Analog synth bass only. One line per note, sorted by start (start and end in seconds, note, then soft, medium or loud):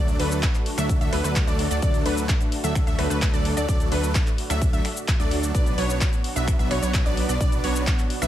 0.00 0.17 D2 loud
0.20 0.43 D2 loud
0.78 0.99 D2 loud
1.01 1.10 D2 loud
1.13 1.22 D2 loud
1.24 1.45 D2 loud
1.47 1.68 D2 loud
1.71 1.80 D2 loud
1.82 2.03 D2 medium
2.06 2.29 D2 loud
2.64 2.85 D2 loud
2.87 2.96 D2 loud
2.99 3.08 D2 loud
3.10 3.31 D2 loud
3.34 3.55 D2 loud
3.57 3.66 D2 medium
3.69 3.89 D2 loud
3.92 4.15 D2 loud
4.50 4.71 D2 loud
4.73 4.80 D2 loud
5.20 5.52 D2 loud
5.55 5.76 B1 medium
5.78 6.01 B1 loud
6.36 6.57 B1 medium
6.59 6.69 B1 loud
6.71 6.80 B1 loud
6.82 7.03 B1 loud
7.06 7.27 B1 medium
7.29 7.38 B1 loud
7.41 7.62 B1 loud
7.64 7.87 B1 loud
8.22 8.27 B1 loud